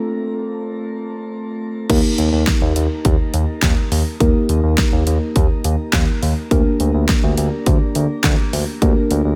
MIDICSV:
0, 0, Header, 1, 4, 480
1, 0, Start_track
1, 0, Tempo, 576923
1, 1577, Time_signature, 4, 2, 24, 8
1, 7784, End_track
2, 0, Start_track
2, 0, Title_t, "Synth keys"
2, 0, Program_c, 0, 88
2, 0, Note_on_c, 0, 57, 77
2, 0, Note_on_c, 0, 60, 67
2, 0, Note_on_c, 0, 65, 70
2, 0, Note_on_c, 0, 69, 81
2, 1544, Note_off_c, 0, 57, 0
2, 1544, Note_off_c, 0, 65, 0
2, 1545, Note_off_c, 0, 60, 0
2, 1545, Note_off_c, 0, 69, 0
2, 1577, Note_on_c, 0, 58, 75
2, 1577, Note_on_c, 0, 63, 71
2, 1577, Note_on_c, 0, 67, 67
2, 1577, Note_on_c, 0, 70, 83
2, 3464, Note_off_c, 0, 58, 0
2, 3464, Note_off_c, 0, 63, 0
2, 3464, Note_off_c, 0, 67, 0
2, 3464, Note_off_c, 0, 70, 0
2, 3498, Note_on_c, 0, 58, 77
2, 3498, Note_on_c, 0, 63, 71
2, 3498, Note_on_c, 0, 67, 69
2, 3498, Note_on_c, 0, 70, 86
2, 5384, Note_off_c, 0, 58, 0
2, 5384, Note_off_c, 0, 63, 0
2, 5384, Note_off_c, 0, 67, 0
2, 5384, Note_off_c, 0, 70, 0
2, 5418, Note_on_c, 0, 58, 76
2, 5418, Note_on_c, 0, 62, 71
2, 5418, Note_on_c, 0, 67, 73
2, 5418, Note_on_c, 0, 70, 87
2, 7304, Note_off_c, 0, 58, 0
2, 7304, Note_off_c, 0, 62, 0
2, 7304, Note_off_c, 0, 67, 0
2, 7304, Note_off_c, 0, 70, 0
2, 7337, Note_on_c, 0, 58, 76
2, 7337, Note_on_c, 0, 62, 71
2, 7337, Note_on_c, 0, 67, 70
2, 7337, Note_on_c, 0, 70, 84
2, 7784, Note_off_c, 0, 58, 0
2, 7784, Note_off_c, 0, 62, 0
2, 7784, Note_off_c, 0, 67, 0
2, 7784, Note_off_c, 0, 70, 0
2, 7784, End_track
3, 0, Start_track
3, 0, Title_t, "Analog synth bass"
3, 0, Program_c, 1, 38
3, 1577, Note_on_c, 1, 39, 109
3, 1672, Note_off_c, 1, 39, 0
3, 1817, Note_on_c, 1, 39, 96
3, 1912, Note_off_c, 1, 39, 0
3, 1936, Note_on_c, 1, 39, 99
3, 2031, Note_off_c, 1, 39, 0
3, 2177, Note_on_c, 1, 39, 102
3, 2272, Note_off_c, 1, 39, 0
3, 2297, Note_on_c, 1, 39, 97
3, 2392, Note_off_c, 1, 39, 0
3, 2538, Note_on_c, 1, 39, 104
3, 2632, Note_off_c, 1, 39, 0
3, 2778, Note_on_c, 1, 39, 106
3, 2872, Note_off_c, 1, 39, 0
3, 3016, Note_on_c, 1, 39, 104
3, 3111, Note_off_c, 1, 39, 0
3, 3257, Note_on_c, 1, 39, 110
3, 3352, Note_off_c, 1, 39, 0
3, 3498, Note_on_c, 1, 39, 104
3, 3592, Note_off_c, 1, 39, 0
3, 3737, Note_on_c, 1, 39, 103
3, 3832, Note_off_c, 1, 39, 0
3, 3857, Note_on_c, 1, 39, 108
3, 3952, Note_off_c, 1, 39, 0
3, 4098, Note_on_c, 1, 39, 98
3, 4192, Note_off_c, 1, 39, 0
3, 4217, Note_on_c, 1, 39, 100
3, 4312, Note_off_c, 1, 39, 0
3, 4458, Note_on_c, 1, 39, 108
3, 4552, Note_off_c, 1, 39, 0
3, 4696, Note_on_c, 1, 39, 104
3, 4791, Note_off_c, 1, 39, 0
3, 4936, Note_on_c, 1, 39, 104
3, 5031, Note_off_c, 1, 39, 0
3, 5178, Note_on_c, 1, 39, 101
3, 5272, Note_off_c, 1, 39, 0
3, 5418, Note_on_c, 1, 38, 100
3, 5512, Note_off_c, 1, 38, 0
3, 5658, Note_on_c, 1, 38, 105
3, 5752, Note_off_c, 1, 38, 0
3, 5777, Note_on_c, 1, 38, 106
3, 5872, Note_off_c, 1, 38, 0
3, 6018, Note_on_c, 1, 38, 106
3, 6112, Note_off_c, 1, 38, 0
3, 6138, Note_on_c, 1, 38, 101
3, 6232, Note_off_c, 1, 38, 0
3, 6378, Note_on_c, 1, 38, 104
3, 6472, Note_off_c, 1, 38, 0
3, 6619, Note_on_c, 1, 38, 105
3, 6713, Note_off_c, 1, 38, 0
3, 6856, Note_on_c, 1, 38, 109
3, 6951, Note_off_c, 1, 38, 0
3, 7098, Note_on_c, 1, 38, 104
3, 7192, Note_off_c, 1, 38, 0
3, 7337, Note_on_c, 1, 38, 112
3, 7432, Note_off_c, 1, 38, 0
3, 7577, Note_on_c, 1, 38, 104
3, 7672, Note_off_c, 1, 38, 0
3, 7697, Note_on_c, 1, 38, 95
3, 7784, Note_off_c, 1, 38, 0
3, 7784, End_track
4, 0, Start_track
4, 0, Title_t, "Drums"
4, 1577, Note_on_c, 9, 36, 117
4, 1577, Note_on_c, 9, 49, 99
4, 1578, Note_on_c, 9, 42, 73
4, 1661, Note_off_c, 9, 36, 0
4, 1661, Note_off_c, 9, 42, 0
4, 1661, Note_off_c, 9, 49, 0
4, 1816, Note_on_c, 9, 42, 68
4, 1899, Note_off_c, 9, 42, 0
4, 2057, Note_on_c, 9, 38, 115
4, 2058, Note_on_c, 9, 36, 116
4, 2058, Note_on_c, 9, 42, 79
4, 2140, Note_off_c, 9, 38, 0
4, 2141, Note_off_c, 9, 36, 0
4, 2141, Note_off_c, 9, 42, 0
4, 2296, Note_on_c, 9, 42, 84
4, 2379, Note_off_c, 9, 42, 0
4, 2536, Note_on_c, 9, 42, 80
4, 2538, Note_on_c, 9, 36, 110
4, 2620, Note_off_c, 9, 42, 0
4, 2621, Note_off_c, 9, 36, 0
4, 2776, Note_on_c, 9, 42, 73
4, 2859, Note_off_c, 9, 42, 0
4, 3016, Note_on_c, 9, 36, 115
4, 3016, Note_on_c, 9, 38, 109
4, 3016, Note_on_c, 9, 39, 88
4, 3019, Note_on_c, 9, 42, 72
4, 3099, Note_off_c, 9, 36, 0
4, 3100, Note_off_c, 9, 38, 0
4, 3100, Note_off_c, 9, 39, 0
4, 3102, Note_off_c, 9, 42, 0
4, 3260, Note_on_c, 9, 46, 81
4, 3343, Note_off_c, 9, 46, 0
4, 3498, Note_on_c, 9, 36, 120
4, 3498, Note_on_c, 9, 42, 73
4, 3581, Note_off_c, 9, 36, 0
4, 3582, Note_off_c, 9, 42, 0
4, 3737, Note_on_c, 9, 42, 69
4, 3820, Note_off_c, 9, 42, 0
4, 3977, Note_on_c, 9, 38, 111
4, 3978, Note_on_c, 9, 36, 115
4, 3978, Note_on_c, 9, 42, 76
4, 4060, Note_off_c, 9, 38, 0
4, 4061, Note_off_c, 9, 36, 0
4, 4061, Note_off_c, 9, 42, 0
4, 4216, Note_on_c, 9, 42, 84
4, 4300, Note_off_c, 9, 42, 0
4, 4457, Note_on_c, 9, 42, 82
4, 4458, Note_on_c, 9, 36, 111
4, 4540, Note_off_c, 9, 42, 0
4, 4541, Note_off_c, 9, 36, 0
4, 4696, Note_on_c, 9, 42, 76
4, 4779, Note_off_c, 9, 42, 0
4, 4936, Note_on_c, 9, 36, 115
4, 4937, Note_on_c, 9, 38, 110
4, 4937, Note_on_c, 9, 39, 90
4, 4939, Note_on_c, 9, 42, 72
4, 5019, Note_off_c, 9, 36, 0
4, 5020, Note_off_c, 9, 38, 0
4, 5020, Note_off_c, 9, 39, 0
4, 5023, Note_off_c, 9, 42, 0
4, 5180, Note_on_c, 9, 46, 77
4, 5263, Note_off_c, 9, 46, 0
4, 5418, Note_on_c, 9, 36, 122
4, 5418, Note_on_c, 9, 42, 72
4, 5501, Note_off_c, 9, 36, 0
4, 5501, Note_off_c, 9, 42, 0
4, 5656, Note_on_c, 9, 42, 71
4, 5740, Note_off_c, 9, 42, 0
4, 5897, Note_on_c, 9, 38, 111
4, 5898, Note_on_c, 9, 36, 122
4, 5898, Note_on_c, 9, 42, 77
4, 5980, Note_off_c, 9, 38, 0
4, 5981, Note_off_c, 9, 36, 0
4, 5981, Note_off_c, 9, 42, 0
4, 6136, Note_on_c, 9, 42, 83
4, 6219, Note_off_c, 9, 42, 0
4, 6376, Note_on_c, 9, 42, 78
4, 6378, Note_on_c, 9, 36, 112
4, 6459, Note_off_c, 9, 42, 0
4, 6461, Note_off_c, 9, 36, 0
4, 6616, Note_on_c, 9, 42, 72
4, 6699, Note_off_c, 9, 42, 0
4, 6856, Note_on_c, 9, 36, 121
4, 6856, Note_on_c, 9, 38, 110
4, 6856, Note_on_c, 9, 39, 88
4, 6859, Note_on_c, 9, 42, 73
4, 6939, Note_off_c, 9, 36, 0
4, 6939, Note_off_c, 9, 38, 0
4, 6939, Note_off_c, 9, 39, 0
4, 6942, Note_off_c, 9, 42, 0
4, 7099, Note_on_c, 9, 46, 79
4, 7182, Note_off_c, 9, 46, 0
4, 7337, Note_on_c, 9, 36, 120
4, 7337, Note_on_c, 9, 42, 73
4, 7421, Note_off_c, 9, 36, 0
4, 7421, Note_off_c, 9, 42, 0
4, 7576, Note_on_c, 9, 42, 69
4, 7659, Note_off_c, 9, 42, 0
4, 7784, End_track
0, 0, End_of_file